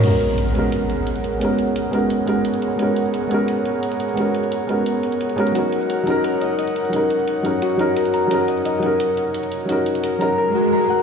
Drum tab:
CC |x---------------|----------------|----------------|----------------|
HH |x-x-x-x-x-x-xxx-|x-x-x-x-x-x-xxx-|x-x-x-x-x-x-xxx-|x-x-x-x-x-xxxxxx|
SH |x--xx---x---xx-x|x--xx---x---xx-x|x--xx---x---xx-x|x--xx---x---xx-x|

CC |----------------|----------------|----------------|----------------|
HH |x-x-x-x-x-x-xxx-|x-x-x-x-x-x-xxx-|x-x-x-x-x-x-xxx-|x-xxx-x---------|
SH |x--xx---x---xx-x|x--xx---x---xx-x|x--xx---x---xx-x|x--xx-x---------|